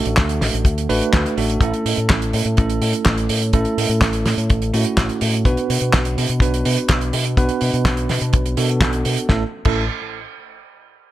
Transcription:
Already playing: A3 D4 F#4 A4
0.05 A1, closed hi-hat
0.17 D2, kick, snare, clap, closed hi-hat
0.29 closed hi-hat
0.41 A1, snare, open hi-hat
0.53 A1, closed hi-hat
0.65 D2, kick, closed hi-hat
0.78 closed hi-hat
0.89 A1 A3 D4 F#4 B4, open hi-hat
1.01 closed hi-hat
1.13 D2, kick, snare, clap, closed hi-hat
1.26 closed hi-hat
1.37 A1 A3 D4 F#4 A4, open hi-hat
1.50 closed hi-hat
1.61 A1 A3 C#4 E4 A4, kick, closed hi-hat
1.74 closed hi-hat
1.85 A2, open hi-hat
1.97 A2, closed hi-hat
2.10 A1, kick, snare, clap, closed hi-hat
2.22 closed hi-hat
2.33 A2, open hi-hat
2.45 A2, closed hi-hat
2.57 A1 A3 C#4 E4 A4, kick, closed hi-hat
2.70 closed hi-hat
2.81 A2, open hi-hat
2.93 closed hi-hat
3.05 A1, kick, snare, clap, closed hi-hat
3.18 closed hi-hat
3.29 A2, open hi-hat
3.41 closed hi-hat
3.53 A1 A3 C#4 E4 A4, kick, closed hi-hat
3.65 closed hi-hat
3.77 A2, open hi-hat
3.89 A2, closed hi-hat
4.01 A1, kick, snare, clap, closed hi-hat
4.13 closed hi-hat
4.25 A2, snare, open hi-hat
4.37 A2, closed hi-hat
4.50 A1, kick, closed hi-hat
4.62 closed hi-hat
4.73 A2 A3 C#4 E4 F#4, open hi-hat
4.85 closed hi-hat
4.97 A1, kick, snare, clap, closed hi-hat
5.09 closed hi-hat
5.21 A2, open hi-hat
5.34 closed hi-hat
5.45 B1 B3 D4 F#4 B4, kick, closed hi-hat
5.57 closed hi-hat
5.70 B2, open hi-hat
5.81 B2, closed hi-hat
5.93 B1, kick, snare, clap, closed hi-hat
6.05 closed hi-hat
6.17 B2, open hi-hat
6.29 B2, closed hi-hat
6.40 B1 B3 D4 F#4 B4, kick, closed hi-hat
6.54 closed hi-hat
6.65 B2, open hi-hat
6.77 closed hi-hat
6.88 B1, kick, snare, clap, closed hi-hat
7.01 closed hi-hat
7.13 B2, open hi-hat
7.24 closed hi-hat
7.37 B1 B3 D4 F#4 B4, kick, closed hi-hat
7.49 closed hi-hat
7.61 B2, open hi-hat
7.74 B2, closed hi-hat
7.85 B1, kick, snare, clap, closed hi-hat
7.97 closed hi-hat
8.09 B2, snare, open hi-hat
8.21 B2, closed hi-hat
8.33 B1, kick, closed hi-hat
8.46 closed hi-hat
8.57 B2 B3 D4 F#4 A4, open hi-hat
8.69 closed hi-hat
8.81 B1, kick, snare, clap, closed hi-hat
8.93 closed hi-hat
9.05 B2, open hi-hat
9.17 closed hi-hat
9.29 A1 A3 C#4 E4 A4, kick, snare
9.65 A1 A3 C#4 E4 A4, kick, crash

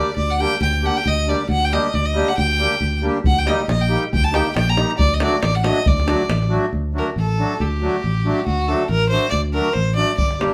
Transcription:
Already playing: D4 G4 D5
0.16 D2 D5
0.30 F#5
0.39 G3 A#3 D4 G4 G5
0.61 D2 G5
0.81 G3 A#3 D4 G4
0.86 F#5
0.97 G5
1.06 D2 D#5
1.26 G3 A#3 D4 G4 D5
1.49 D2 F#5
1.65 G5
1.71 G3 A#3 D4 G4 D#5
1.94 D2 D5
2.06 D#5
2.13 G3 A#3 D4 G4
2.28 F#5
2.38 D2 G5
2.59 G3 A#3 D4 G4
2.81 D2
3.01 G3 A#3 D4 G4
3.24 D2 F#5, davul low
3.39 G5
3.45 G3 A#3 D#4 G4 D#5, davul high
3.59 davul high
3.68 A#1 D#5, davul high
3.81 G5
3.88 G3 A#3 D#4 G4
4.13 D2 G5, davul low
4.24 A5
4.32 G3 A#3 D#4 G4 G5, davul high
4.47 davul high
4.56 A#1 G5, davul high
4.69 A#5, davul high
4.75 G3 A#3 D#4 G4, davul high
4.98 D2 D5, davul low
5.14 D#5
5.19 F#3 A3 D4 F#4 D5, davul high
5.33 davul high
5.42 A1 D5, davul high
5.55 F#5, davul high
5.63 F#3 A3 D4 F#4 D#5, davul high
5.86 D2 D5, davul low
6.00 davul high
6.06 F#3 A3 D4 F#4, davul high
6.21 davul high
6.29 A1, davul high
6.42 davul high
6.48 F#3 A3 D4 F#4
6.64 davul high
6.73 D2
6.93 F#3 A3 D4 F#4
6.98 A#4
7.16 A1 A4
7.37 F#3 A3 D4 F#4
7.60 D2 G4
7.80 F#3 A3 D4 F#4
8.04 A1
8.24 F#3 A3 D4 F#4
8.46 D2 F#4
8.68 F#3 A3 D4 F#4 A4
8.89 A1 A#4
9.10 F#3 A3 D4 F#4 C5
9.30 D2 D5
9.52 F#3 A3 D4 F#4 A#4
9.73 A1 C5
9.95 F#3 A3 D4 F#4 D5
10.18 G1 D5, davul low
10.31 davul high
10.39 G3 A#3 D4 G4, davul high

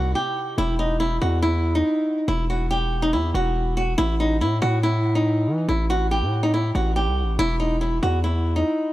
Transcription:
Already playing: C2 C3 E3 C4 F#4 C5
0.15 G4
0.58 E1 E4
0.79 D#4
1.00 E4
1.21 E2 F#4
1.42 E4
1.75 D#4
2.28 E1 E4
2.50 F#4
2.71 G4
3.02 D#4
3.13 E2 E4
3.34 E1 F#4
3.77 F#4
3.98 A1 E4
4.20 D#4
4.41 A2 E4
4.62 A2 F#4
4.83 E4
5.15 D#4
5.47 E3
5.69 A1 E4
5.90 F#4
6.11 G4
6.22 A2
6.43 D#4
6.54 E4
6.75 A1 F#4
6.96 G4
7.07 C2
7.23 A1
7.39 E1 E4
7.60 D#4
7.81 E4
8.03 E2 F#4
8.24 E4
8.56 D#4

